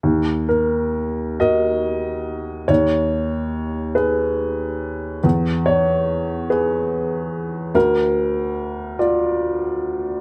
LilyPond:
\new Staff \with { instrumentName = "Upright piano" } { \time 6/8 \key dis \phrygian \tempo 4. = 47 << { r8 ais'4 dis''4. | cis''4. b'4. | r8 cis''4 r4. | ais'4. r4. | } \\ { dis,4. <fis' ais'>4. | dis,4. gis'4. | e,4. <gis' b'>4. | d,4. <eis' d''>4. | } >> }